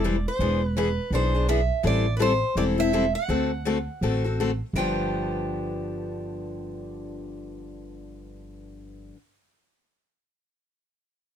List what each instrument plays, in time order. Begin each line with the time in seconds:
Already playing: upright bass E1, steel-string acoustic guitar D5
0.04 steel-string acoustic guitar E3 G3 C4 E4 A4
0.28 steel-string acoustic guitar C5
0.39 upright bass E1, steel-string acoustic guitar E3 B3 D4 G#4
0.65 steel-string acoustic guitar B4
0.77 steel-string acoustic guitar E3 B3 D4 G#4 B4
1.10 upright bass B1, steel-string acoustic guitar E3 B3 D4 G#4
1.15 steel-string acoustic guitar C5
1.34 steel-string acoustic guitar B3 D4 G#4
1.49 steel-string acoustic guitar E3 B3 D4 G#4 E5
1.83 upright bass A1, steel-string acoustic guitar E3 G3 C4 E4 A4 D5
2.17 steel-string acoustic guitar E3 G3 C4 E4 A4 B4
2.22 steel-string acoustic guitar C5
2.55 upright bass E1, steel-string acoustic guitar E3 G3 C4 E4 A4 D5
2.78 steel-string acoustic guitar C4 E4 A4 E5
2.93 steel-string acoustic guitar E3 G3 C4 E4 A4
3.15 steel-string acoustic guitar F#5
3.28 upright bass D2, steel-string acoustic guitar D3 A3 C4 F#4 A4
3.65 steel-string acoustic guitar D3 A3 C4 F#4 A4
4.01 upright bass A1, steel-string acoustic guitar D3 A3 C4 F#4 A4
4.24 steel-string acoustic guitar C4 F#4 A4
4.40 steel-string acoustic guitar D3 A3 C4 F#4 A4
4.73 upright bass G1, steel-string acoustic guitar G2 D3 F3 G5
4.78 steel-string acoustic guitar B3 D4 G4